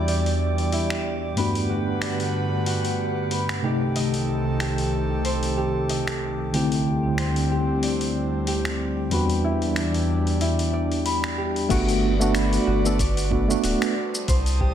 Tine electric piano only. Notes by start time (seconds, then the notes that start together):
Already playing: E2 G3 B3 D4 F#4
1.36 G2 A3 B3 D4
1.40 F#4
3.62 C3 A3 D#4
3.66 G4
6.53 D3 A3 C4 E4
6.57 G4
9.10 E2 G3 B3 D4
9.14 F#4
11.69 A3 B3 D4 F#4
12.20 A3 B3 D4 F#4
12.84 A3 B3 D4 A4
13.30 A3 B3 D4 F#4
13.48 A3 B3 D4 F#4